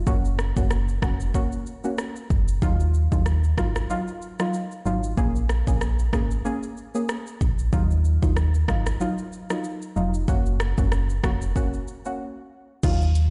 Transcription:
0.06 0.53 F#1 loud
0.06 0.52 A#3 loud
0.06 0.52 C#4 medium
0.06 0.52 F#4 loud
0.06 kick loud
0.06 shaker medium
0.25 shaker medium
0.39 cross-stick medium
0.39 shaker medium
0.56 0.99 F#1 loud
0.56 0.68 A#3 medium
0.56 0.68 C#4 medium
0.56 0.69 F#4 medium
0.56 kick loud
0.56 shaker medium
0.71 cross-stick medium
0.71 shaker medium
0.88 shaker medium
1.02 1.32 F1 loud
1.02 1.17 A#3 medium
1.02 1.18 C#4 medium
1.02 1.18 F#4 medium
1.02 kick medium
1.02 cross-stick medium
1.02 shaker soft
1.20 shaker medium
1.34 1.49 A#3 medium
1.34 1.50 C#4 medium
1.34 1.50 F#4 loud
1.34 kick medium
1.34 shaker medium
1.52 shaker medium
1.66 shaker soft
1.84 1.96 A#3 medium
1.84 1.96 C#4 medium
1.84 1.96 F#4 medium
1.84 shaker medium
1.98 cross-stick medium
1.98 shaker medium
2.16 shaker soft
2.30 2.60 F#1 medium
2.30 kick loud
2.30 shaker medium
2.48 shaker medium
2.62 3.08 D#2 loud
2.62 3.07 F#3 loud
2.62 3.08 D#4 medium
2.62 3.08 F4 loud
2.62 kick loud
2.62 shaker medium
2.80 shaker medium
2.94 shaker medium
3.12 3.54 D#2 loud
3.12 3.24 F#3 medium
3.12 3.24 D#4 medium
3.12 3.24 F4 medium
3.12 kick loud
3.12 shaker medium
3.26 cross-stick medium
3.26 shaker medium
3.44 shaker medium
3.58 3.87 G#1 loud
3.58 3.73 F#3 medium
3.58 3.73 D#4 medium
3.58 3.73 F4 medium
3.58 kick medium
3.58 cross-stick medium
3.58 shaker soft
3.76 cross-stick medium
3.76 shaker medium
3.89 4.05 F#3 medium
3.89 4.05 D#4 medium
3.89 4.05 F4 loud
3.89 shaker medium
4.08 shaker medium
4.22 shaker soft
4.39 4.82 F#3 medium
4.39 4.82 D#4 medium
4.39 4.82 F4 medium
4.39 cross-stick medium
4.39 shaker medium
4.53 shaker medium
4.71 shaker soft
4.85 5.15 G#1 medium
4.85 5.15 F#3 medium
4.85 5.15 D#4 medium
4.85 5.15 F4 medium
4.85 shaker medium
5.03 shaker medium
5.17 5.63 A#1 loud
5.17 5.63 A#3 loud
5.17 5.63 C#4 medium
5.17 5.63 G#4 loud
5.17 kick loud
5.17 shaker medium
5.35 shaker medium
5.49 cross-stick medium
5.49 shaker medium
5.67 6.09 A#1 medium
5.67 5.79 A#3 medium
5.67 5.79 C#4 medium
5.67 5.79 G#4 medium
5.67 kick loud
5.67 shaker medium
5.81 cross-stick medium
5.81 shaker medium
5.99 shaker medium
6.13 6.42 G#1 medium
6.13 6.28 A#3 medium
6.13 6.28 C#4 medium
6.13 6.28 G#4 medium
6.13 kick medium
6.13 cross-stick medium
6.13 shaker soft
6.31 shaker medium
6.45 6.60 A#3 medium
6.45 6.60 C#4 medium
6.45 6.60 G#4 loud
6.45 shaker medium
6.63 shaker medium
6.77 shaker soft
6.94 7.07 A#3 medium
6.94 7.07 C#4 medium
6.94 7.07 G#4 medium
6.94 shaker medium
7.09 cross-stick medium
7.09 shaker medium
7.27 shaker soft
7.41 7.70 A#1 medium
7.41 kick loud
7.41 shaker medium
7.59 shaker medium
7.72 8.19 D#2 loud
7.72 8.18 F#3 loud
7.72 8.18 D#4 medium
7.72 8.18 F4 loud
7.72 kick loud
7.72 shaker medium
7.91 shaker medium
8.05 shaker medium
8.22 8.65 D#2 medium
8.22 8.34 F#3 medium
8.22 8.34 D#4 medium
8.22 8.35 F4 medium
8.22 kick loud
8.22 shaker medium
8.37 cross-stick medium
8.37 shaker medium
8.54 shaker medium
8.68 8.98 G#1 medium
8.68 8.83 F#3 medium
8.68 8.84 D#4 medium
8.68 8.84 F4 medium
8.68 kick medium
8.68 cross-stick medium
8.68 shaker soft
8.86 cross-stick medium
8.86 shaker medium
9.00 9.15 F#3 loud
9.00 9.16 D#4 medium
9.00 9.16 F4 loud
9.00 shaker medium
9.18 shaker medium
9.32 shaker medium
9.50 9.93 F#3 medium
9.50 9.93 D#4 medium
9.50 9.93 F4 medium
9.50 cross-stick medium
9.50 shaker medium
9.64 shaker medium
9.82 shaker soft
9.96 10.25 F1 medium
9.96 10.26 F#3 medium
9.96 10.26 D#4 medium
9.96 10.26 F4 medium
9.96 shaker medium
10.14 shaker medium
10.28 10.74 F#1 loud
10.28 10.73 A#3 loud
10.28 10.74 C#4 medium
10.28 10.74 F#4 loud
10.28 kick loud
10.28 shaker medium
10.46 shaker medium
10.60 cross-stick loud
10.60 shaker medium
10.77 11.20 F#1 loud
10.77 10.90 A#3 medium
10.77 10.90 C#4 medium
10.77 10.90 F#4 medium
10.77 kick loud
10.77 shaker medium
10.92 cross-stick medium
10.92 shaker medium
11.10 shaker medium
11.24 11.53 F1 loud
11.24 11.39 A#3 medium
11.24 11.39 C#4 medium
11.24 11.39 F#4 medium
11.24 kick medium
11.24 cross-stick loud
11.24 shaker soft
11.42 shaker medium
11.55 11.71 A#3 medium
11.55 11.71 C#4 medium
11.55 11.71 F#4 loud
11.55 kick medium
11.55 shaker medium
11.73 shaker medium
11.88 shaker soft
12.05 12.17 A#3 medium
12.05 12.17 C#4 medium
12.05 12.18 F#4 medium
12.05 shaker medium
12.83 13.29 D#2 loud
12.83 13.29 F#3 loud
12.83 13.29 D#4 medium
12.83 13.29 F4 loud
12.83 kick loud
12.83 crash loud
12.83 shaker medium
13.01 shaker medium
13.15 closed hi-hat medium
13.15 shaker medium

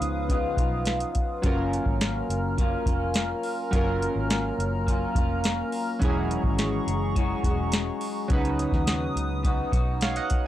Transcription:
0.00 0.47 C#2 medium
0.00 0.28 C#3 medium
0.00 1.39 F3 medium
0.00 0.29 B3 medium
0.00 1.39 C#4 medium
0.00 0.30 D#4 medium
0.00 1.40 D#4 medium
0.00 0.32 F4 medium
0.00 1.41 B4 medium
0.00 1.42 B4 medium
0.00 1.42 F5 medium
0.00 1.42 D#6 medium
0.00 closed hi-hat medium
0.29 0.58 C#3 medium
0.29 0.58 B3 medium
0.29 0.58 D#4 medium
0.29 0.56 F4 medium
0.29 kick medium
0.29 closed hi-hat medium
0.57 1.03 B1 medium
0.57 1.44 B3 soft
0.57 1.44 D#4 medium
0.57 1.46 F4 medium
0.57 kick medium
0.57 closed hi-hat medium
0.85 snare loud
0.85 closed hi-hat medium
1.00 closed hi-hat medium
1.15 kick medium
1.15 closed hi-hat medium
1.42 1.78 F#1 loud
1.42 3.68 F#3 medium
1.42 2.57 F#3 medium
1.42 2.58 A#3 medium
1.42 3.69 C#4 medium
1.42 3.69 F4 medium
1.42 5.97 A#4 medium
1.42 10.47 A#5 medium
1.42 5.97 F6 medium
1.42 kick loud
1.42 closed hi-hat medium
1.46 2.60 C#4 medium
1.46 2.60 F4 medium
1.46 3.70 A#4 medium
1.73 closed hi-hat soft
1.86 2.21 G#1 medium
1.86 kick medium
2.01 snare loud
2.01 closed hi-hat medium
2.29 2.75 F#1 medium
2.29 closed hi-hat medium
2.58 2.87 F#3 medium
2.58 2.87 A#3 medium
2.58 2.87 C#4 medium
2.58 2.85 F4 medium
2.58 kick medium
2.58 closed hi-hat medium
2.86 3.32 F1 medium
2.86 3.72 A#3 soft
2.86 3.74 C#4 medium
2.86 3.72 F4 medium
2.86 kick medium
2.86 closed hi-hat medium
3.14 snare loud
3.14 closed hi-hat medium
3.43 open hi-hat soft
3.71 4.07 F#1 loud
3.71 5.97 F#3 medium
3.71 4.86 F#3 medium
3.71 4.87 A#3 medium
3.71 5.97 C#4 medium
3.71 5.98 F4 medium
3.71 kick loud
3.71 closed hi-hat medium
3.75 4.88 C#4 medium
3.75 4.89 F4 medium
3.75 5.99 A#4 medium
4.02 closed hi-hat medium
4.16 4.50 G#1 medium
4.30 snare loud
4.30 closed hi-hat medium
4.58 5.04 F#1 medium
4.58 closed hi-hat medium
4.87 5.16 F#3 medium
4.87 5.16 A#3 medium
4.87 5.16 C#4 medium
4.87 5.14 F4 medium
4.87 kick medium
4.87 closed hi-hat medium
5.15 5.61 F1 medium
5.15 6.03 A#3 soft
5.15 6.05 C#4 medium
5.15 6.01 F4 medium
5.15 kick medium
5.15 closed hi-hat medium
5.44 snare loud
5.44 closed hi-hat medium
5.72 open hi-hat soft
5.99 6.36 E1 medium
5.99 7.15 E3 medium
5.99 8.25 F#3 medium
5.99 8.26 C#4 medium
5.99 8.27 E4 medium
5.99 8.28 G#4 medium
5.99 8.28 C#6 medium
5.99 kick loud
5.99 closed hi-hat medium
6.03 7.16 G#3 medium
6.03 7.17 C#4 medium
6.03 7.19 F#4 medium
6.03 8.28 G#4 medium
6.31 closed hi-hat medium
6.44 6.78 G#1 medium
6.44 kick medium
6.59 snare loud
6.59 closed hi-hat medium
6.87 7.33 F#1 medium
6.87 closed hi-hat medium
7.16 7.44 E3 medium
7.16 7.45 G#3 medium
7.16 7.44 C#4 medium
7.16 7.43 F#4 medium
7.16 kick medium
7.16 closed hi-hat medium
7.43 7.90 E1 medium
7.43 8.30 G#3 medium
7.43 8.32 C#4 medium
7.43 8.33 F#4 medium
7.43 kick medium
7.43 closed hi-hat medium
7.72 snare loud
7.72 closed hi-hat medium
8.01 open hi-hat medium
8.28 8.65 C#2 loud
8.28 9.42 C#3 medium
8.28 10.47 F#3 medium
8.28 9.44 B3 medium
8.28 10.47 C#4 medium
8.28 10.47 D#4 medium
8.28 9.45 D#4 medium
8.28 10.47 B4 medium
8.28 10.47 D#6 medium
8.28 kick loud
8.28 closed hi-hat medium
8.33 9.46 F#4 medium
8.33 10.47 B4 medium
8.45 closed hi-hat soft
8.59 closed hi-hat medium
8.72 9.07 D#2 medium
8.72 kick medium
8.72 snare soft
8.87 snare loud
8.87 closed hi-hat medium
9.16 9.62 C#2 medium
9.16 closed hi-hat medium
9.43 9.72 C#3 medium
9.43 9.73 B3 medium
9.43 9.72 D#4 medium
9.43 9.71 F#4 medium
9.43 kick medium
9.43 closed hi-hat medium
9.72 10.18 B1 medium
9.72 10.47 B3 soft
9.72 10.47 D#4 medium
9.72 10.47 F#4 medium
9.72 kick medium
9.72 closed hi-hat medium
10.01 10.16 C#5 medium
10.01 10.16 F5 medium
10.01 snare loud
10.01 closed hi-hat medium
10.16 10.44 D#5 medium
10.16 10.43 F#5 medium
10.16 closed hi-hat medium
10.30 kick medium
10.30 closed hi-hat medium

